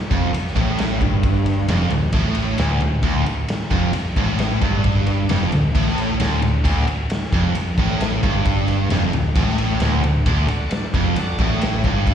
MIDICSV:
0, 0, Header, 1, 7, 480
1, 0, Start_track
1, 0, Tempo, 451467
1, 1316, Time_signature, 4, 2, 24, 8
1, 12907, End_track
2, 0, Start_track
2, 0, Title_t, "Tonewheel organ"
2, 0, Program_c, 0, 16
2, 10922, Note_on_c, 0, 66, 73
2, 10922, Note_on_c, 0, 69, 75
2, 10925, Note_on_c, 0, 62, 82
2, 10930, Note_on_c, 0, 74, 89
2, 11544, Note_off_c, 0, 66, 0
2, 11544, Note_off_c, 0, 69, 0
2, 11546, Note_off_c, 0, 62, 0
2, 11548, Note_off_c, 0, 74, 0
2, 11875, Note_on_c, 0, 66, 72
2, 11880, Note_on_c, 0, 69, 69
2, 11881, Note_on_c, 0, 62, 80
2, 11882, Note_on_c, 0, 74, 83
2, 12344, Note_off_c, 0, 66, 0
2, 12346, Note_off_c, 0, 69, 0
2, 12347, Note_off_c, 0, 62, 0
2, 12347, Note_off_c, 0, 74, 0
2, 12587, Note_on_c, 0, 62, 70
2, 12588, Note_on_c, 0, 66, 71
2, 12592, Note_on_c, 0, 74, 80
2, 12593, Note_on_c, 0, 69, 69
2, 12747, Note_off_c, 0, 62, 0
2, 12748, Note_off_c, 0, 66, 0
2, 12750, Note_off_c, 0, 69, 0
2, 12750, Note_off_c, 0, 74, 0
2, 12850, Note_on_c, 0, 66, 72
2, 12851, Note_on_c, 0, 62, 78
2, 12851, Note_on_c, 0, 76, 91
2, 12853, Note_on_c, 0, 69, 71
2, 12907, Note_off_c, 0, 62, 0
2, 12907, Note_off_c, 0, 66, 0
2, 12907, Note_off_c, 0, 69, 0
2, 12907, Note_off_c, 0, 76, 0
2, 12907, End_track
3, 0, Start_track
3, 0, Title_t, "Overdriven electric guitar"
3, 0, Program_c, 1, 29
3, 114, Note_on_c, 1, 41, 97
3, 348, Note_off_c, 1, 41, 0
3, 591, Note_on_c, 1, 45, 96
3, 1068, Note_off_c, 1, 45, 0
3, 1068, Note_on_c, 1, 43, 90
3, 1784, Note_off_c, 1, 43, 0
3, 1792, Note_on_c, 1, 41, 100
3, 2027, Note_off_c, 1, 41, 0
3, 2033, Note_on_c, 1, 38, 71
3, 2226, Note_off_c, 1, 38, 0
3, 2265, Note_on_c, 1, 45, 104
3, 2743, Note_off_c, 1, 45, 0
3, 2751, Note_on_c, 1, 38, 102
3, 2982, Note_off_c, 1, 38, 0
3, 2995, Note_on_c, 1, 38, 66
3, 3187, Note_off_c, 1, 38, 0
3, 3228, Note_on_c, 1, 38, 102
3, 3454, Note_off_c, 1, 38, 0
3, 3951, Note_on_c, 1, 41, 96
3, 4186, Note_off_c, 1, 41, 0
3, 4432, Note_on_c, 1, 45, 102
3, 4900, Note_off_c, 1, 45, 0
3, 4905, Note_on_c, 1, 43, 92
3, 5622, Note_off_c, 1, 43, 0
3, 5631, Note_on_c, 1, 41, 96
3, 5866, Note_off_c, 1, 41, 0
3, 5876, Note_on_c, 1, 38, 72
3, 6067, Note_off_c, 1, 38, 0
3, 6109, Note_on_c, 1, 45, 97
3, 6584, Note_off_c, 1, 45, 0
3, 6592, Note_on_c, 1, 38, 105
3, 6814, Note_off_c, 1, 38, 0
3, 6827, Note_on_c, 1, 38, 67
3, 7022, Note_off_c, 1, 38, 0
3, 7064, Note_on_c, 1, 38, 101
3, 7297, Note_off_c, 1, 38, 0
3, 7799, Note_on_c, 1, 41, 101
3, 8029, Note_off_c, 1, 41, 0
3, 8276, Note_on_c, 1, 45, 98
3, 8744, Note_off_c, 1, 45, 0
3, 8748, Note_on_c, 1, 43, 96
3, 9464, Note_off_c, 1, 43, 0
3, 9474, Note_on_c, 1, 41, 101
3, 9707, Note_off_c, 1, 41, 0
3, 9715, Note_on_c, 1, 38, 68
3, 9906, Note_off_c, 1, 38, 0
3, 9949, Note_on_c, 1, 45, 104
3, 10424, Note_off_c, 1, 45, 0
3, 10438, Note_on_c, 1, 38, 103
3, 10661, Note_off_c, 1, 38, 0
3, 10674, Note_on_c, 1, 38, 74
3, 10866, Note_off_c, 1, 38, 0
3, 10909, Note_on_c, 1, 38, 101
3, 11135, Note_off_c, 1, 38, 0
3, 11633, Note_on_c, 1, 41, 102
3, 11866, Note_off_c, 1, 41, 0
3, 12115, Note_on_c, 1, 45, 96
3, 12587, Note_off_c, 1, 45, 0
3, 12594, Note_on_c, 1, 43, 96
3, 12907, Note_off_c, 1, 43, 0
3, 12907, End_track
4, 0, Start_track
4, 0, Title_t, "Picked electric bass"
4, 0, Program_c, 2, 34
4, 119, Note_on_c, 2, 29, 86
4, 341, Note_off_c, 2, 29, 0
4, 594, Note_on_c, 2, 33, 87
4, 1041, Note_off_c, 2, 33, 0
4, 1071, Note_on_c, 2, 31, 85
4, 1751, Note_off_c, 2, 31, 0
4, 1791, Note_on_c, 2, 29, 92
4, 2016, Note_off_c, 2, 29, 0
4, 2024, Note_on_c, 2, 26, 74
4, 2252, Note_off_c, 2, 26, 0
4, 2265, Note_on_c, 2, 33, 89
4, 2716, Note_off_c, 2, 33, 0
4, 2753, Note_on_c, 2, 26, 89
4, 2977, Note_off_c, 2, 26, 0
4, 2988, Note_on_c, 2, 26, 79
4, 3214, Note_off_c, 2, 26, 0
4, 3223, Note_on_c, 2, 26, 88
4, 3452, Note_off_c, 2, 26, 0
4, 3944, Note_on_c, 2, 29, 91
4, 4172, Note_off_c, 2, 29, 0
4, 4430, Note_on_c, 2, 33, 84
4, 4878, Note_off_c, 2, 33, 0
4, 4904, Note_on_c, 2, 31, 87
4, 5587, Note_off_c, 2, 31, 0
4, 5635, Note_on_c, 2, 29, 86
4, 5858, Note_off_c, 2, 29, 0
4, 5878, Note_on_c, 2, 26, 74
4, 6100, Note_off_c, 2, 26, 0
4, 6108, Note_on_c, 2, 33, 84
4, 6558, Note_off_c, 2, 33, 0
4, 6591, Note_on_c, 2, 26, 86
4, 6816, Note_off_c, 2, 26, 0
4, 6836, Note_on_c, 2, 26, 74
4, 7058, Note_off_c, 2, 26, 0
4, 7071, Note_on_c, 2, 26, 88
4, 7296, Note_off_c, 2, 26, 0
4, 7789, Note_on_c, 2, 29, 90
4, 8015, Note_off_c, 2, 29, 0
4, 8271, Note_on_c, 2, 33, 87
4, 8719, Note_off_c, 2, 33, 0
4, 8747, Note_on_c, 2, 31, 88
4, 9428, Note_off_c, 2, 31, 0
4, 9457, Note_on_c, 2, 29, 87
4, 9688, Note_off_c, 2, 29, 0
4, 9702, Note_on_c, 2, 26, 76
4, 9931, Note_off_c, 2, 26, 0
4, 9948, Note_on_c, 2, 33, 90
4, 10397, Note_off_c, 2, 33, 0
4, 10425, Note_on_c, 2, 26, 91
4, 10652, Note_off_c, 2, 26, 0
4, 10659, Note_on_c, 2, 26, 75
4, 10889, Note_off_c, 2, 26, 0
4, 10908, Note_on_c, 2, 26, 93
4, 11134, Note_off_c, 2, 26, 0
4, 11632, Note_on_c, 2, 29, 89
4, 11856, Note_off_c, 2, 29, 0
4, 12106, Note_on_c, 2, 33, 83
4, 12556, Note_off_c, 2, 33, 0
4, 12589, Note_on_c, 2, 31, 90
4, 12907, Note_off_c, 2, 31, 0
4, 12907, End_track
5, 0, Start_track
5, 0, Title_t, "Muted overdriven electric guitar strokes"
5, 355, Note_on_c, 9, 29, 59
5, 461, Note_off_c, 9, 29, 0
5, 3467, Note_on_c, 9, 29, 56
5, 3573, Note_off_c, 9, 29, 0
5, 4190, Note_on_c, 9, 29, 58
5, 4296, Note_off_c, 9, 29, 0
5, 7310, Note_on_c, 9, 29, 55
5, 7416, Note_off_c, 9, 29, 0
5, 8038, Note_on_c, 9, 29, 57
5, 8144, Note_off_c, 9, 29, 0
5, 11148, Note_on_c, 9, 29, 61
5, 11254, Note_off_c, 9, 29, 0
5, 11880, Note_on_c, 9, 29, 56
5, 11987, Note_off_c, 9, 29, 0
5, 12907, End_track
6, 0, Start_track
6, 0, Title_t, "Muted picked electric bass strokes"
6, 358, Note_on_c, 9, 29, 39
6, 465, Note_off_c, 9, 29, 0
6, 3464, Note_on_c, 9, 29, 39
6, 3571, Note_off_c, 9, 29, 0
6, 4195, Note_on_c, 9, 29, 38
6, 4301, Note_off_c, 9, 29, 0
6, 7311, Note_on_c, 9, 29, 39
6, 7417, Note_off_c, 9, 29, 0
6, 8022, Note_on_c, 9, 29, 39
6, 8129, Note_off_c, 9, 29, 0
6, 11145, Note_on_c, 9, 29, 39
6, 11252, Note_off_c, 9, 29, 0
6, 11881, Note_on_c, 9, 29, 39
6, 11987, Note_off_c, 9, 29, 0
6, 12907, End_track
7, 0, Start_track
7, 0, Title_t, "Drums"
7, 117, Note_on_c, 9, 36, 104
7, 124, Note_on_c, 9, 51, 63
7, 224, Note_off_c, 9, 36, 0
7, 230, Note_off_c, 9, 51, 0
7, 364, Note_on_c, 9, 51, 84
7, 471, Note_off_c, 9, 51, 0
7, 500, Note_on_c, 9, 38, 30
7, 595, Note_on_c, 9, 36, 105
7, 599, Note_on_c, 9, 51, 69
7, 607, Note_off_c, 9, 38, 0
7, 702, Note_off_c, 9, 36, 0
7, 706, Note_off_c, 9, 51, 0
7, 833, Note_on_c, 9, 51, 84
7, 853, Note_on_c, 9, 38, 98
7, 940, Note_off_c, 9, 51, 0
7, 959, Note_off_c, 9, 38, 0
7, 1073, Note_on_c, 9, 36, 98
7, 1079, Note_on_c, 9, 51, 65
7, 1180, Note_off_c, 9, 36, 0
7, 1185, Note_off_c, 9, 51, 0
7, 1310, Note_on_c, 9, 51, 93
7, 1312, Note_on_c, 9, 36, 101
7, 1417, Note_off_c, 9, 51, 0
7, 1418, Note_off_c, 9, 36, 0
7, 1550, Note_on_c, 9, 51, 65
7, 1656, Note_off_c, 9, 51, 0
7, 1790, Note_on_c, 9, 51, 89
7, 1809, Note_on_c, 9, 38, 101
7, 1896, Note_off_c, 9, 51, 0
7, 1915, Note_off_c, 9, 38, 0
7, 1932, Note_on_c, 9, 38, 31
7, 2023, Note_on_c, 9, 51, 72
7, 2038, Note_off_c, 9, 38, 0
7, 2130, Note_off_c, 9, 51, 0
7, 2259, Note_on_c, 9, 51, 92
7, 2265, Note_on_c, 9, 36, 106
7, 2365, Note_off_c, 9, 51, 0
7, 2371, Note_off_c, 9, 36, 0
7, 2495, Note_on_c, 9, 51, 75
7, 2601, Note_off_c, 9, 51, 0
7, 2741, Note_on_c, 9, 51, 94
7, 2760, Note_on_c, 9, 38, 109
7, 2847, Note_off_c, 9, 51, 0
7, 2866, Note_off_c, 9, 38, 0
7, 2981, Note_on_c, 9, 51, 71
7, 3087, Note_off_c, 9, 51, 0
7, 3217, Note_on_c, 9, 51, 92
7, 3222, Note_on_c, 9, 36, 103
7, 3323, Note_off_c, 9, 51, 0
7, 3329, Note_off_c, 9, 36, 0
7, 3468, Note_on_c, 9, 51, 65
7, 3575, Note_off_c, 9, 51, 0
7, 3704, Note_on_c, 9, 51, 83
7, 3723, Note_on_c, 9, 38, 101
7, 3810, Note_off_c, 9, 51, 0
7, 3829, Note_off_c, 9, 38, 0
7, 3943, Note_on_c, 9, 51, 65
7, 3945, Note_on_c, 9, 36, 104
7, 4049, Note_off_c, 9, 51, 0
7, 4051, Note_off_c, 9, 36, 0
7, 4179, Note_on_c, 9, 51, 91
7, 4285, Note_off_c, 9, 51, 0
7, 4426, Note_on_c, 9, 36, 104
7, 4426, Note_on_c, 9, 51, 69
7, 4532, Note_off_c, 9, 36, 0
7, 4533, Note_off_c, 9, 51, 0
7, 4661, Note_on_c, 9, 51, 82
7, 4681, Note_on_c, 9, 38, 99
7, 4768, Note_off_c, 9, 51, 0
7, 4787, Note_off_c, 9, 38, 0
7, 4907, Note_on_c, 9, 36, 103
7, 4908, Note_on_c, 9, 51, 65
7, 5013, Note_off_c, 9, 36, 0
7, 5014, Note_off_c, 9, 51, 0
7, 5145, Note_on_c, 9, 51, 85
7, 5149, Note_on_c, 9, 36, 102
7, 5252, Note_off_c, 9, 51, 0
7, 5256, Note_off_c, 9, 36, 0
7, 5385, Note_on_c, 9, 51, 64
7, 5491, Note_off_c, 9, 51, 0
7, 5625, Note_on_c, 9, 51, 83
7, 5644, Note_on_c, 9, 38, 100
7, 5731, Note_off_c, 9, 51, 0
7, 5750, Note_off_c, 9, 38, 0
7, 5868, Note_on_c, 9, 51, 70
7, 5975, Note_off_c, 9, 51, 0
7, 6111, Note_on_c, 9, 36, 95
7, 6115, Note_on_c, 9, 51, 89
7, 6217, Note_off_c, 9, 36, 0
7, 6221, Note_off_c, 9, 51, 0
7, 6253, Note_on_c, 9, 38, 29
7, 6355, Note_on_c, 9, 51, 72
7, 6359, Note_off_c, 9, 38, 0
7, 6461, Note_off_c, 9, 51, 0
7, 6589, Note_on_c, 9, 51, 97
7, 6608, Note_on_c, 9, 38, 104
7, 6695, Note_off_c, 9, 51, 0
7, 6714, Note_off_c, 9, 38, 0
7, 6828, Note_on_c, 9, 51, 65
7, 6935, Note_off_c, 9, 51, 0
7, 7071, Note_on_c, 9, 36, 103
7, 7072, Note_on_c, 9, 51, 98
7, 7177, Note_off_c, 9, 36, 0
7, 7178, Note_off_c, 9, 51, 0
7, 7308, Note_on_c, 9, 51, 64
7, 7415, Note_off_c, 9, 51, 0
7, 7546, Note_on_c, 9, 51, 83
7, 7566, Note_on_c, 9, 38, 98
7, 7653, Note_off_c, 9, 51, 0
7, 7672, Note_off_c, 9, 38, 0
7, 7690, Note_on_c, 9, 38, 30
7, 7787, Note_on_c, 9, 51, 71
7, 7788, Note_on_c, 9, 36, 105
7, 7796, Note_off_c, 9, 38, 0
7, 7894, Note_off_c, 9, 51, 0
7, 7895, Note_off_c, 9, 36, 0
7, 8028, Note_on_c, 9, 51, 88
7, 8134, Note_off_c, 9, 51, 0
7, 8266, Note_on_c, 9, 51, 69
7, 8269, Note_on_c, 9, 36, 109
7, 8373, Note_off_c, 9, 51, 0
7, 8375, Note_off_c, 9, 36, 0
7, 8512, Note_on_c, 9, 51, 83
7, 8531, Note_on_c, 9, 38, 106
7, 8618, Note_off_c, 9, 51, 0
7, 8637, Note_off_c, 9, 38, 0
7, 8752, Note_on_c, 9, 36, 98
7, 8759, Note_on_c, 9, 51, 64
7, 8858, Note_off_c, 9, 36, 0
7, 8865, Note_off_c, 9, 51, 0
7, 8988, Note_on_c, 9, 51, 91
7, 8991, Note_on_c, 9, 36, 97
7, 9094, Note_off_c, 9, 51, 0
7, 9097, Note_off_c, 9, 36, 0
7, 9227, Note_on_c, 9, 51, 64
7, 9333, Note_off_c, 9, 51, 0
7, 9464, Note_on_c, 9, 51, 82
7, 9483, Note_on_c, 9, 38, 107
7, 9571, Note_off_c, 9, 51, 0
7, 9590, Note_off_c, 9, 38, 0
7, 9707, Note_on_c, 9, 51, 67
7, 9813, Note_off_c, 9, 51, 0
7, 9945, Note_on_c, 9, 51, 96
7, 9948, Note_on_c, 9, 36, 101
7, 10051, Note_off_c, 9, 51, 0
7, 10054, Note_off_c, 9, 36, 0
7, 10085, Note_on_c, 9, 38, 30
7, 10188, Note_on_c, 9, 51, 76
7, 10191, Note_off_c, 9, 38, 0
7, 10294, Note_off_c, 9, 51, 0
7, 10419, Note_on_c, 9, 51, 91
7, 10438, Note_on_c, 9, 38, 104
7, 10525, Note_off_c, 9, 51, 0
7, 10544, Note_off_c, 9, 38, 0
7, 10669, Note_on_c, 9, 51, 71
7, 10776, Note_off_c, 9, 51, 0
7, 10906, Note_on_c, 9, 51, 99
7, 10909, Note_on_c, 9, 36, 105
7, 11013, Note_off_c, 9, 51, 0
7, 11016, Note_off_c, 9, 36, 0
7, 11145, Note_on_c, 9, 51, 72
7, 11251, Note_off_c, 9, 51, 0
7, 11383, Note_on_c, 9, 51, 91
7, 11402, Note_on_c, 9, 38, 102
7, 11489, Note_off_c, 9, 51, 0
7, 11508, Note_off_c, 9, 38, 0
7, 11629, Note_on_c, 9, 36, 104
7, 11632, Note_on_c, 9, 51, 72
7, 11736, Note_off_c, 9, 36, 0
7, 11738, Note_off_c, 9, 51, 0
7, 11867, Note_on_c, 9, 51, 93
7, 11973, Note_off_c, 9, 51, 0
7, 12105, Note_on_c, 9, 51, 69
7, 12108, Note_on_c, 9, 36, 107
7, 12211, Note_off_c, 9, 51, 0
7, 12214, Note_off_c, 9, 36, 0
7, 12348, Note_on_c, 9, 51, 85
7, 12368, Note_on_c, 9, 38, 105
7, 12455, Note_off_c, 9, 51, 0
7, 12474, Note_off_c, 9, 38, 0
7, 12586, Note_on_c, 9, 51, 67
7, 12589, Note_on_c, 9, 36, 96
7, 12692, Note_off_c, 9, 51, 0
7, 12695, Note_off_c, 9, 36, 0
7, 12830, Note_on_c, 9, 36, 105
7, 12832, Note_on_c, 9, 51, 84
7, 12907, Note_off_c, 9, 36, 0
7, 12907, Note_off_c, 9, 51, 0
7, 12907, End_track
0, 0, End_of_file